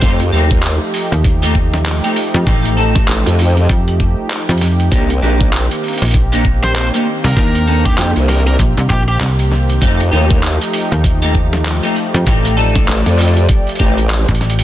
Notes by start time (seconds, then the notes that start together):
Already playing: G4
0.01 F2 F3 A3 C4 D#4 G4, kick, closed hi-hat
0.20 closed hi-hat
0.33 D#2 A3 C4 D#4 G4
0.51 kick
0.63 clap, closed hi-hat
0.94 open hi-hat
1.12 D#2, closed hi-hat
1.24 kick, closed hi-hat
1.42 A3 C4 D#4 G4, closed hi-hat
1.55 kick
1.74 snare
1.86 clap, closed hi-hat
2.04 A3 C4 D#4 G4, closed hi-hat
2.16 open hi-hat
2.34 F2, closed hi-hat
2.46 A1 A3 C4 D#4 G4, kick, closed hi-hat
2.65 closed hi-hat
2.77 A3 C4 D#4 A4
2.95 kick, snare, closed hi-hat
3.08 A1, clap, closed hi-hat
3.26 F2, snare, closed hi-hat
3.39 open hi-hat
3.57 closed hi-hat
3.69 F2, kick, closed hi-hat
3.88 closed hi-hat
4.00 kick
4.31 clap, closed hi-hat
4.49 F2, closed hi-hat
4.51 closed hi-hat
4.57 snare, closed hi-hat
4.61 closed hi-hat, open hi-hat
4.68 closed hi-hat
4.72 closed hi-hat
4.80 closed hi-hat
4.91 C2 D#3 A#3 C4 D4 D#4 G4, kick, closed hi-hat
5.10 closed hi-hat
5.22 A#1 A#3 D4 D#4 G4
5.41 kick
5.53 clap, closed hi-hat
5.71 closed hi-hat
5.84 open hi-hat
5.88 open hi-hat
5.93 open hi-hat
5.98 open hi-hat
6.02 A#1, closed hi-hat, open hi-hat
6.05 open hi-hat
6.08 open hi-hat
6.11 kick, closed hi-hat, open hi-hat
6.32 A#3 D4 D#4 G4, closed hi-hat
6.45 kick
6.63 C5, snare
6.76 C5, clap, closed hi-hat
6.94 A#3 D4 D#4 G4, closed hi-hat
7.24 C2 A#4, closed hi-hat, open hi-hat
7.37 D#2 A#3 D4 D#4 G4, kick, closed hi-hat
7.55 closed hi-hat
7.67 A#3 D4 D#4 A4
7.86 G4, kick, snare
7.98 F2 G4, clap, closed hi-hat
8.16 C2, closed hi-hat
8.29 A#4, snare, open hi-hat
8.47 A#4, closed hi-hat
8.59 A#1, kick, closed hi-hat
8.77 C2, closed hi-hat
8.90 A#1 G4, kick
9.08 G4
9.21 C2, clap, closed hi-hat
9.39 closed hi-hat
9.51 snare
9.70 closed hi-hat
9.81 F2 F3 A3 C4 D#4 G4, kick, closed hi-hat
10.00 closed hi-hat
10.12 D#2 A3 C4 D#4 G4
10.31 kick
10.43 clap, closed hi-hat
10.61 closed hi-hat
10.73 open hi-hat
10.92 D#2, closed hi-hat
11.04 kick, closed hi-hat
11.22 A3 C4 D#4 G4, closed hi-hat
11.35 kick
11.53 snare
11.66 clap, closed hi-hat
11.83 A3 C4 D#4 G4, closed hi-hat
11.96 open hi-hat
12.14 F2, closed hi-hat
12.26 A1 A3 C4 D#4 G4 D5, kick, closed hi-hat
12.45 closed hi-hat
12.57 A3 C4 D#4 A4
12.76 kick, snare, closed hi-hat
12.88 A1, clap, closed hi-hat
13.06 F2, snare, closed hi-hat
13.19 clap, open hi-hat
13.22 open hi-hat
13.25 open hi-hat
13.28 open hi-hat
13.34 closed hi-hat, open hi-hat
13.49 kick, closed hi-hat
13.67 closed hi-hat
13.69 closed hi-hat
13.75 G4, closed hi-hat
13.80 A1 A3 C4 D#4, kick
13.98 closed hi-hat
14.10 clap, closed hi-hat
14.29 A1, kick
14.35 closed hi-hat
14.41 snare, closed hi-hat
14.50 closed hi-hat
14.59 closed hi-hat